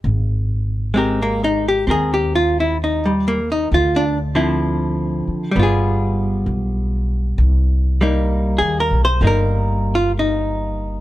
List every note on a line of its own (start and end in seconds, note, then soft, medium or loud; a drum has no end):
0.04 1.84 G#1 medium
0.94 3.27 G#3 soft
0.94 1.22 C4 medium
0.94 1.67 G4 soft
0.98 1.89 A#4 soft
1.22 1.44 A#3 medium
1.44 1.65 D#4 medium
1.68 1.85 G4 medium
1.87 3.67 D#2 medium
1.87 3.71 C4 soft
1.87 1.91 G4 soft
1.87 3.73 A#4 soft
1.91 2.13 G#4 medium
2.14 2.35 G4 medium
2.35 2.57 F4 medium
2.60 2.76 E4 medium
2.84 3.12 D#4 medium
3.06 3.39 G3 soft
3.28 3.49 A#3 medium
3.52 3.68 D#4 medium
3.72 5.23 D2 medium
3.72 4.04 F4 medium
3.96 4.17 D4 medium
4.35 5.55 D3 soft
4.35 5.51 F3 soft
4.35 5.56 C4 soft
4.35 5.56 E4 medium
5.27 muted upright bass stroke soft
5.51 6.43 G1 medium
5.51 7.37 G3 medium
5.56 7.39 B3 medium
5.56 7.41 F4 medium
5.63 7.43 G#4 medium
6.46 7.34 B1 medium
7.38 8.57 C2 medium
8.01 9.20 G3 soft
8.01 9.21 A#3 soft
8.01 9.23 D#4 soft
8.58 8.89 D#2 medium
8.58 8.80 G#4 medium
8.80 9.01 A#4 medium
8.91 9.20 B1 medium
9.05 9.20 C5 medium
9.21 11.01 G1 medium
9.21 11.01 G3 soft
9.21 11.01 A#3 soft
9.21 9.95 D#4 soft
9.27 10.02 A#4 medium
9.95 10.11 F4 medium
10.19 11.01 D#4 medium